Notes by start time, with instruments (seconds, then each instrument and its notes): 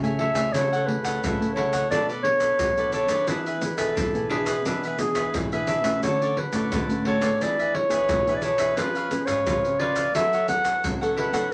Already playing: nylon-string guitar C#3
0.03 nylon-string guitar A3 E4 G#4, cavaquinho C#5 E5 G#5, pandeiro, shaker
0.17 cavaquinho A4 C#5, clarinet E5, pandeiro
0.22 cavaquinho E5 G#5
0.33 nylon-string guitar C#3 A3 E4 G#4, cavaquinho C#5 E5 G#5, pandeiro, shaker, surdo
0.53 nylon-string guitar C#3, cavaquinho E4 A4 C#5, clarinet C#5, pandeiro, shaker, surdo
0.57 cavaquinho F#5
0.73 cavaquinho A4 C#5 F#5, pandeiro, shaker
0.87 nylon-string guitar A3 E4 G#4, clarinet B4, muted cavaquinho stroke, pandeiro
1.02 nylon-string guitar C#3, cavaquinho C#5 F#5, pandeiro, shaker, surdo
1.06 cavaquinho A4
1.22 nylon-string guitar C#3, cavaquinho E4 A4, pandeiro, shaker, surdo
1.26 cavaquinho C#5 F#5
1.40 nylon-string guitar A3 E4 G#4, pandeiro, shaker
1.54 cavaquinho E4 A4 C#5 F#5, clarinet C#5, pandeiro
1.73 cavaquinho A4 C#5 F#5, pandeiro, shaker, surdo
1.90 nylon-string guitar B2 B3 D4 A4 C#5, cavaquinho D4 A4 B4, clarinet D5, pandeiro, shaker, surdo
1.95 cavaquinho D5
2.09 cavaquinho A4 B4 D5, pandeiro, shaker
2.23 nylon-string guitar D4 A4 C#5, clarinet C#5, muted cavaquinho stroke, pandeiro
2.40 cavaquinho A4 B4, pandeiro, shaker, surdo
2.59 nylon-string guitar B2 F#3, pandeiro, shaker, surdo
2.77 nylon-string guitar D4 A4 C#5, cavaquinho A4 B4 D5, pandeiro, shaker
2.92 cavaquinho D4 A4 B4 D5, clarinet C#5, pandeiro, shaker
3.08 nylon-string guitar D#3 B3 D4 G#4, cavaquinho A4 B4 D5, pandeiro, shaker, surdo
3.27 nylon-string guitar E3, cavaquinho D4 G#4 B4 E5, clarinet B4, pandeiro, shaker, surdo
3.46 cavaquinho G#4 B4 E5, pandeiro, shaker
3.61 nylon-string guitar B3 D4 G#4, muted cavaquinho stroke, pandeiro, shaker
3.78 nylon-string guitar B2, cavaquinho G#4 B4 E5, clarinet A4, pandeiro, shaker, surdo
3.95 nylon-string guitar B2 E3, cavaquinho D4 B4 E5, pandeiro, shaker, surdo
4.14 nylon-string guitar B3 D4 G#4, pandeiro, shaker
4.29 cavaquinho D4 G#4 B4 E5, clarinet G#4, pandeiro
4.46 cavaquinho G#4 B4 E5, pandeiro, shaker, surdo
4.65 nylon-string guitar B2 E3 B3 D4 G#4, cavaquinho D4 G#4 B4 E5, clarinet B4, pandeiro, shaker, surdo
4.83 cavaquinho G#4 B4 E5, pandeiro, shaker
4.99 nylon-string guitar B3 D4 G#4, clarinet G#4, muted cavaquinho stroke, pandeiro, shaker
5.15 cavaquinho G#4 B4 E5, pandeiro, shaker, surdo
5.34 nylon-string guitar B2 E3, pandeiro, shaker, surdo
5.52 nylon-string guitar B3 D4 G#4, cavaquinho G#4 B4 E5, pandeiro, shaker
5.67 cavaquinho D4 G#4 B4 E5, clarinet E5, pandeiro, shaker
5.83 nylon-string guitar E3 A3 C#4 F#4, cavaquinho G#4 B4 E5, pandeiro, shaker, surdo
6.03 nylon-string guitar D3, cavaquinho F#4 A4 C#5 D5, clarinet C#5, pandeiro, shaker, surdo
6.22 cavaquinho A4 C#5 D5, pandeiro, shaker
6.37 clarinet B4, muted cavaquinho stroke, pandeiro
6.52 nylon-string guitar A2 A3 C#4 F#4, cavaquinho A4 C#5 D5, pandeiro, shaker, surdo
6.71 nylon-string guitar A2 D3, cavaquinho F#4 A4 C#5 D5, pandeiro, shaker, surdo
6.89 nylon-string guitar A3 C#4 F#4, pandeiro, shaker
7.05 cavaquinho F#4 A4 C#5 D5, clarinet C#5, pandeiro
7.20 nylon-string guitar B3 D4 G#4, cavaquinho C#5 D5, pandeiro, shaker, surdo
7.24 cavaquinho A4
7.40 nylon-string guitar E3, cavaquinho D4 G#4 B4 E5, clarinet D5, pandeiro, shaker, surdo
7.59 cavaquinho G#4 B4 E5, pandeiro, shaker
7.75 clarinet C#5, muted cavaquinho stroke, pandeiro
7.89 nylon-string guitar B3 D4 G#4, cavaquinho E5, pandeiro, shaker, surdo
7.93 cavaquinho G#4 B4
8.08 nylon-string guitar B2 E3, pandeiro, shaker, surdo
8.26 nylon-string guitar B3 D4 G#4, cavaquinho B4 E5, pandeiro, shaker
8.30 cavaquinho G#4
8.36 clarinet D5
8.42 cavaquinho D4 G#4 B4 E5, clarinet C#5, pandeiro, shaker
8.58 nylon-string guitar E3, cavaquinho G#4 B4 E5, pandeiro, shaker, surdo
8.77 nylon-string guitar F3 B3 C#4 G#4, cavaquinho F4 B4 C#5 F5, clarinet B4, pandeiro, shaker, surdo
8.95 cavaquinho B4 C#5 F5, pandeiro, shaker
9.11 nylon-string guitar B3 C#4 G#4, muted cavaquinho stroke, pandeiro, shaker
9.26 nylon-string guitar G#2, cavaquinho B4 C#5 F5, clarinet C#5, pandeiro, shaker, surdo
9.46 nylon-string guitar C#3 F3, cavaquinho F4 B4 C#5, pandeiro, shaker, surdo
9.50 cavaquinho F5
9.64 nylon-string guitar B3 C#4 G#4, pandeiro, shaker
9.79 cavaquinho F4 B4 C#5 F5, clarinet D5, pandeiro
9.96 cavaquinho B4 C#5 F5, pandeiro, shaker, surdo
10.15 nylon-string guitar F#3 B3 E4 A4, cavaquinho E4 A4 C#5 F#5, clarinet E5, pandeiro, shaker, surdo
10.33 cavaquinho A4 C#5 F#5, pandeiro, shaker
10.48 nylon-string guitar B3 E4 A4, clarinet F#5, muted cavaquinho stroke, pandeiro, shaker, surdo
10.65 cavaquinho A4 C#5 F#5, pandeiro, shaker, surdo
10.84 nylon-string guitar C#3 F#3, pandeiro, shaker, surdo
11.01 nylon-string guitar B3 E4 A4, cavaquinho A4 C#5 F#5, pandeiro, shaker
11.16 cavaquinho E4 A4 C#5 F#5, clarinet B4, pandeiro
11.32 nylon-string guitar F#3 B3 D#4 A4, cavaquinho A4 C#5 F#5, pandeiro, shaker, surdo